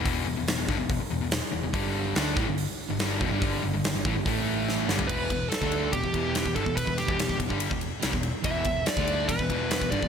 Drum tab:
CC |----------------|----------------|----------------|x---------------|
RD |----------------|----------------|----------------|--x-x-x-x-x-x-x-|
HH |o---o---o---o---|o---o---o---o---|o---o---o-------|----------------|
SD |----o-o-----o---|----o-o-----o---|----o-------o-o-|----o-------o---|
FT |----------------|----------------|---------------o|----------------|
BD |o-----o-o-------|o-----o-------o-|o-----o-o-------|o-o--o--ooo--ooo|

CC |----------------|----------------|
RD |x-x-x-x-x-x-x-x-|x-x-x-x-x-x-x-x-|
HH |----------------|----------------|
SD |--o-o-------o---|----o-------o---|
FT |----------------|----------------|
BD |oo-o-ooo-o---o--|o-o--o--ooo--ooo|